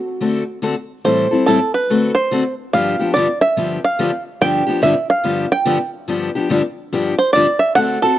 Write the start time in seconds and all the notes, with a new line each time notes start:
Already playing: F#4
0.21 D3 A3 C4 F#4 A4
0.62 D3 A3 C4 F#4 A4
1.04 A2 E3 G3 C4 E4 A4 C5
1.31 G3 C4 E4 A4
1.46 A2 E3 G3 C4 E4 A4
1.74 B4
1.90 D3 A3 C4 F#4 A4
2.15 C5
2.31 D3 A3 C4 F#4 A4
2.73 G2 D3 F3 B3 D4 G4 F5
2.99 F3 B3 D4 G4
3.14 G2 D3 F3 B3 D4 G4 D5
3.41 E5
3.57 G2 D3 F3 B3 D4 G4
3.85 F5
3.99 G2 D3 F3 B3 D4 G4
4.41 G2 D3 F3 B3 D4 G4 G5
4.67 F3 B3 D4 G4
4.82 G2 D3 F3 B3 D4 G4 E5
5.10 F5
5.23 G2 D3 F3 B3 D4 G4
5.52 G5
5.65 G2 D3 F3 B3 D4 G4
6.08 G2 D3 F3 B3 D4 G4
6.35 F3 B3 D4 G4
6.50 G2 D3 F3 B3 D4 G4
6.92 G2 D3 F3 B3 D4 G4
7.19 C5
7.33 G2 D3 F3 B3 D4 G4 D5
7.59 E5
7.75 D3 A3 C4 F#4 A4 F#5
8.02 C4 F#4 A4